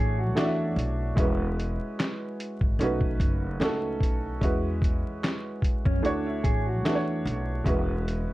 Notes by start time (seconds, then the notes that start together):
Already playing: A1 A3 D4 E4 F#4 G#4 C#5
0.19 F#4
0.35 E2 A3 D4 E4 F#4 D5, snare, clap, closed hi-hat
0.45 E5
0.76 B1, closed hi-hat
1.16 E1 G#3 C#4 E4 F#4, kick, closed hi-hat
1.20 B4
1.60 closed hi-hat
2.00 snare, clap, closed hi-hat
2.40 closed hi-hat
2.61 G#1, kick
2.79 B1 A3 C#4 D#4 F#4, closed hi-hat
2.83 B4
3.01 kick
3.20 F#1, kick, closed hi-hat
3.60 C#2 A3 C#4 D#4 F#4 A4, snare, clap, closed hi-hat
4.01 B1, kick, closed hi-hat
4.41 E2 G#3 C#4 E4 F#4 B4, kick, closed hi-hat
4.82 kick, closed hi-hat
5.24 snare, clap, closed hi-hat
5.62 kick, closed hi-hat
5.85 F#2 C#4, kick
6.02 D2 A3 D4 E4 F#4 C#5, closed hi-hat
6.26 E4
6.44 A1 G#4, kick, closed hi-hat
6.67 F#4
6.85 E2 A3 D4 E4 F#4 B4, snare, clap, closed hi-hat
6.95 C#5
7.25 B1, closed hi-hat
7.64 E1 G#3 C#4 E4 F#4 B4, kick, closed hi-hat
8.08 closed hi-hat